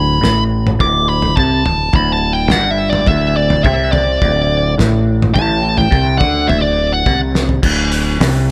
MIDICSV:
0, 0, Header, 1, 5, 480
1, 0, Start_track
1, 0, Tempo, 568720
1, 679, Time_signature, 4, 2, 24, 8
1, 7184, End_track
2, 0, Start_track
2, 0, Title_t, "Lead electric guitar"
2, 0, Program_c, 0, 29
2, 0, Note_on_c, 0, 83, 95
2, 357, Note_off_c, 0, 83, 0
2, 682, Note_on_c, 0, 86, 99
2, 917, Note_off_c, 0, 86, 0
2, 920, Note_on_c, 0, 83, 102
2, 1149, Note_off_c, 0, 83, 0
2, 1152, Note_on_c, 0, 81, 96
2, 1379, Note_off_c, 0, 81, 0
2, 1402, Note_on_c, 0, 81, 91
2, 1648, Note_off_c, 0, 81, 0
2, 1654, Note_on_c, 0, 83, 100
2, 1793, Note_off_c, 0, 83, 0
2, 1797, Note_on_c, 0, 81, 91
2, 1962, Note_off_c, 0, 81, 0
2, 1966, Note_on_c, 0, 79, 97
2, 2121, Note_off_c, 0, 79, 0
2, 2121, Note_on_c, 0, 78, 94
2, 2285, Note_off_c, 0, 78, 0
2, 2285, Note_on_c, 0, 76, 94
2, 2441, Note_off_c, 0, 76, 0
2, 2445, Note_on_c, 0, 74, 93
2, 2597, Note_off_c, 0, 74, 0
2, 2600, Note_on_c, 0, 76, 92
2, 2838, Note_off_c, 0, 76, 0
2, 2841, Note_on_c, 0, 74, 83
2, 3063, Note_off_c, 0, 74, 0
2, 3071, Note_on_c, 0, 76, 86
2, 3297, Note_off_c, 0, 76, 0
2, 3309, Note_on_c, 0, 74, 85
2, 3999, Note_off_c, 0, 74, 0
2, 4510, Note_on_c, 0, 81, 100
2, 4875, Note_off_c, 0, 81, 0
2, 4878, Note_on_c, 0, 79, 101
2, 5213, Note_off_c, 0, 79, 0
2, 5217, Note_on_c, 0, 78, 100
2, 5471, Note_on_c, 0, 76, 88
2, 5474, Note_off_c, 0, 78, 0
2, 5582, Note_off_c, 0, 76, 0
2, 5586, Note_on_c, 0, 74, 87
2, 5839, Note_off_c, 0, 74, 0
2, 5846, Note_on_c, 0, 78, 79
2, 6065, Note_off_c, 0, 78, 0
2, 7184, End_track
3, 0, Start_track
3, 0, Title_t, "Clean electric guitar"
3, 0, Program_c, 1, 27
3, 0, Note_on_c, 1, 38, 105
3, 175, Note_off_c, 1, 38, 0
3, 179, Note_on_c, 1, 45, 95
3, 662, Note_off_c, 1, 45, 0
3, 669, Note_on_c, 1, 38, 98
3, 1146, Note_off_c, 1, 38, 0
3, 1155, Note_on_c, 1, 48, 93
3, 1390, Note_off_c, 1, 48, 0
3, 1642, Note_on_c, 1, 38, 113
3, 2121, Note_off_c, 1, 38, 0
3, 2121, Note_on_c, 1, 43, 92
3, 2592, Note_off_c, 1, 43, 0
3, 2602, Note_on_c, 1, 38, 113
3, 3084, Note_off_c, 1, 38, 0
3, 3084, Note_on_c, 1, 48, 99
3, 3554, Note_off_c, 1, 48, 0
3, 3567, Note_on_c, 1, 38, 104
3, 4029, Note_off_c, 1, 38, 0
3, 4032, Note_on_c, 1, 45, 96
3, 4505, Note_off_c, 1, 45, 0
3, 4515, Note_on_c, 1, 45, 110
3, 4982, Note_off_c, 1, 45, 0
3, 4986, Note_on_c, 1, 48, 105
3, 5223, Note_on_c, 1, 50, 102
3, 5224, Note_off_c, 1, 48, 0
3, 5463, Note_off_c, 1, 50, 0
3, 5466, Note_on_c, 1, 38, 103
3, 5944, Note_off_c, 1, 38, 0
3, 5963, Note_on_c, 1, 48, 102
3, 6433, Note_off_c, 1, 48, 0
3, 6436, Note_on_c, 1, 38, 102
3, 6909, Note_off_c, 1, 38, 0
3, 6924, Note_on_c, 1, 48, 104
3, 7184, Note_off_c, 1, 48, 0
3, 7184, End_track
4, 0, Start_track
4, 0, Title_t, "Fingered electric bass"
4, 0, Program_c, 2, 33
4, 0, Note_on_c, 2, 26, 91
4, 167, Note_off_c, 2, 26, 0
4, 193, Note_on_c, 2, 33, 93
4, 642, Note_off_c, 2, 33, 0
4, 676, Note_on_c, 2, 26, 97
4, 1123, Note_off_c, 2, 26, 0
4, 1160, Note_on_c, 2, 36, 101
4, 1382, Note_off_c, 2, 36, 0
4, 1394, Note_on_c, 2, 26, 85
4, 1619, Note_off_c, 2, 26, 0
4, 1632, Note_on_c, 2, 26, 93
4, 2081, Note_off_c, 2, 26, 0
4, 2120, Note_on_c, 2, 31, 101
4, 2565, Note_off_c, 2, 31, 0
4, 2595, Note_on_c, 2, 26, 97
4, 3043, Note_off_c, 2, 26, 0
4, 3076, Note_on_c, 2, 36, 94
4, 3523, Note_off_c, 2, 36, 0
4, 3562, Note_on_c, 2, 26, 102
4, 4006, Note_off_c, 2, 26, 0
4, 4041, Note_on_c, 2, 33, 96
4, 4486, Note_off_c, 2, 33, 0
4, 4525, Note_on_c, 2, 33, 100
4, 4967, Note_off_c, 2, 33, 0
4, 4996, Note_on_c, 2, 36, 96
4, 5219, Note_off_c, 2, 36, 0
4, 5239, Note_on_c, 2, 38, 100
4, 5461, Note_off_c, 2, 38, 0
4, 5473, Note_on_c, 2, 26, 92
4, 5921, Note_off_c, 2, 26, 0
4, 5961, Note_on_c, 2, 36, 98
4, 6406, Note_off_c, 2, 36, 0
4, 6443, Note_on_c, 2, 26, 95
4, 6887, Note_off_c, 2, 26, 0
4, 6924, Note_on_c, 2, 36, 100
4, 7184, Note_off_c, 2, 36, 0
4, 7184, End_track
5, 0, Start_track
5, 0, Title_t, "Drums"
5, 199, Note_on_c, 9, 43, 88
5, 200, Note_on_c, 9, 38, 78
5, 283, Note_off_c, 9, 43, 0
5, 285, Note_off_c, 9, 38, 0
5, 562, Note_on_c, 9, 47, 77
5, 647, Note_off_c, 9, 47, 0
5, 677, Note_on_c, 9, 36, 106
5, 678, Note_on_c, 9, 43, 84
5, 761, Note_off_c, 9, 36, 0
5, 762, Note_off_c, 9, 43, 0
5, 1033, Note_on_c, 9, 43, 84
5, 1117, Note_off_c, 9, 43, 0
5, 1158, Note_on_c, 9, 36, 105
5, 1159, Note_on_c, 9, 47, 81
5, 1242, Note_off_c, 9, 36, 0
5, 1244, Note_off_c, 9, 47, 0
5, 1398, Note_on_c, 9, 43, 89
5, 1482, Note_off_c, 9, 43, 0
5, 1630, Note_on_c, 9, 43, 87
5, 1634, Note_on_c, 9, 36, 106
5, 1715, Note_off_c, 9, 43, 0
5, 1718, Note_off_c, 9, 36, 0
5, 2109, Note_on_c, 9, 43, 86
5, 2111, Note_on_c, 9, 38, 82
5, 2194, Note_off_c, 9, 43, 0
5, 2195, Note_off_c, 9, 38, 0
5, 2471, Note_on_c, 9, 47, 84
5, 2555, Note_off_c, 9, 47, 0
5, 2587, Note_on_c, 9, 43, 87
5, 2594, Note_on_c, 9, 36, 112
5, 2671, Note_off_c, 9, 43, 0
5, 2679, Note_off_c, 9, 36, 0
5, 2956, Note_on_c, 9, 43, 88
5, 3040, Note_off_c, 9, 43, 0
5, 3077, Note_on_c, 9, 36, 97
5, 3078, Note_on_c, 9, 47, 81
5, 3161, Note_off_c, 9, 36, 0
5, 3162, Note_off_c, 9, 47, 0
5, 3317, Note_on_c, 9, 43, 91
5, 3401, Note_off_c, 9, 43, 0
5, 3560, Note_on_c, 9, 36, 111
5, 3565, Note_on_c, 9, 43, 88
5, 3644, Note_off_c, 9, 36, 0
5, 3649, Note_off_c, 9, 43, 0
5, 4045, Note_on_c, 9, 43, 87
5, 4046, Note_on_c, 9, 38, 81
5, 4129, Note_off_c, 9, 43, 0
5, 4131, Note_off_c, 9, 38, 0
5, 4409, Note_on_c, 9, 47, 81
5, 4494, Note_off_c, 9, 47, 0
5, 4521, Note_on_c, 9, 36, 116
5, 4523, Note_on_c, 9, 43, 92
5, 4605, Note_off_c, 9, 36, 0
5, 4607, Note_off_c, 9, 43, 0
5, 4875, Note_on_c, 9, 43, 82
5, 4959, Note_off_c, 9, 43, 0
5, 4999, Note_on_c, 9, 36, 108
5, 5083, Note_off_c, 9, 36, 0
5, 5239, Note_on_c, 9, 36, 114
5, 5240, Note_on_c, 9, 43, 94
5, 5324, Note_off_c, 9, 36, 0
5, 5325, Note_off_c, 9, 43, 0
5, 5481, Note_on_c, 9, 43, 93
5, 5566, Note_off_c, 9, 43, 0
5, 5961, Note_on_c, 9, 36, 106
5, 5964, Note_on_c, 9, 43, 89
5, 6045, Note_off_c, 9, 36, 0
5, 6048, Note_off_c, 9, 43, 0
5, 6205, Note_on_c, 9, 38, 65
5, 6289, Note_off_c, 9, 38, 0
5, 6321, Note_on_c, 9, 43, 81
5, 6406, Note_off_c, 9, 43, 0
5, 6441, Note_on_c, 9, 36, 103
5, 6442, Note_on_c, 9, 49, 119
5, 6525, Note_off_c, 9, 36, 0
5, 6527, Note_off_c, 9, 49, 0
5, 6682, Note_on_c, 9, 46, 60
5, 6767, Note_off_c, 9, 46, 0
5, 6930, Note_on_c, 9, 46, 78
5, 6932, Note_on_c, 9, 38, 107
5, 7015, Note_off_c, 9, 46, 0
5, 7016, Note_off_c, 9, 38, 0
5, 7184, End_track
0, 0, End_of_file